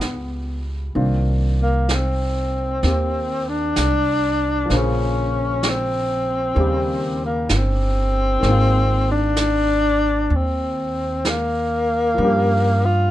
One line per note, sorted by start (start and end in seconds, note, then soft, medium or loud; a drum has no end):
0.00 0.91 C#2 medium
0.00 0.96 G3 soft
0.00 0.65 B3 medium
0.00 0.96 B3 soft
0.00 0.95 F4 soft
0.00 0.97 G#4 soft
0.00 brush sweep soft
0.00 snare soft
0.00 hi-hat pedal soft
0.94 2.79 C2 medium
0.94 4.70 D#3 soft
0.94 2.82 A#3 soft
0.94 2.83 C4 soft
0.94 4.70 D4 soft
0.94 4.71 F4 medium
0.94 brush sweep soft
1.62 1.96 A#3 medium
1.89 brush sweep soft
1.89 snare soft
1.89 hi-hat pedal soft
1.95 3.50 C4 medium
2.83 3.72 D#2 medium
2.83 4.68 A#3 soft
2.83 4.71 C4 soft
2.83 4.72 G4 soft
2.83 brush sweep soft
2.83 snare soft
3.49 4.77 D4 medium
3.76 4.66 C2 medium
3.76 brush sweep soft
3.76 snare soft
3.76 hi-hat pedal medium
4.66 6.55 F3 medium
4.66 6.56 A#3 medium
4.70 6.53 A#1 medium
4.70 6.58 C#3 medium
4.70 6.57 C5 medium
4.70 brush sweep soft
4.70 snare soft
4.76 5.71 C#4 medium
4.76 6.60 G#4 medium
5.63 brush sweep soft
5.63 snare soft
5.63 hi-hat pedal medium
5.69 7.23 C4 medium
6.55 7.46 D#2 medium
6.55 8.38 D#3 medium
6.55 8.43 G3 medium
6.55 8.44 A#3 medium
6.55 brush sweep soft
6.59 8.45 C#3 soft
6.59 8.45 G4 medium
7.26 7.58 A#3 medium
7.49 8.40 G1 medium
7.49 brush sweep soft
7.49 snare soft
7.49 hi-hat pedal soft
7.57 9.10 C4 medium
8.40 10.27 G#1 medium
8.40 12.17 D#3 medium
8.40 12.18 G#3 medium
8.40 brush sweep soft
8.40 snare soft
8.46 12.18 A#3 medium
8.46 12.21 C4 medium
8.51 12.22 F4 medium
9.11 10.37 D4 loud
9.36 brush sweep soft
9.36 snare soft
9.36 hi-hat pedal soft
10.30 12.14 D#2 medium
10.30 brush sweep soft
10.35 11.30 C4 medium
11.25 brush sweep soft
11.25 snare soft
11.25 hi-hat pedal soft
11.29 12.87 A#3 medium
12.14 13.08 G2 medium
12.14 13.11 F3 medium
12.14 13.11 G3 soft
12.19 13.11 A#3 soft
12.19 13.11 C#4 medium
12.19 brush sweep soft
12.25 13.11 G4 medium
12.85 13.11 F4 medium